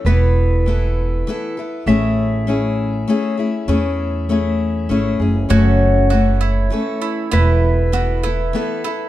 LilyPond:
<<
  \new Staff \with { instrumentName = "Pedal steel guitar" } { \time 3/4 \key a \major \tempo 4 = 99 b'2. | e''2.~ | e''2~ e''8 r8 | cis''2. |
b'2. | }
  \new Staff \with { instrumentName = "Mandolin" } { \time 3/4 \key a \major r2. | r2. | r2. | fis'4 fis'8 e'4 e'8 |
e'4 fis'8 e'4 e'8 | }
  \new Staff \with { instrumentName = "Steel-string acoustic guitar" } { \time 3/4 \key a \major <e b e' a'>4 <e b e' a'>4 <e b e' a'>8 <b e' a'>8 | <a cis' e' gis'>4 <a cis' e' gis'>4 <a cis' e' gis'>8 <cis' e' gis'>8 | <a cis' e' gis'>4 <a cis' e' gis'>4 <a cis' e' gis'>8 <cis' e' gis'>8 | <fis, cis e a cis' a'>4 <e a cis' a'>4 <e a cis' a'>4 |
<e b e' a'>4 <e b e' a'>8 <b e' a'>8 <e b e' a'>8 <b e' a'>8 | }
  \new Staff \with { instrumentName = "Upright bass" } { \clef bass \time 3/4 \key a \major e,,2 r4 | a,,2 r4 | e,2 gis,,8 fis,,8 | fis,,2 r4 |
e,,2 r4 | }
>>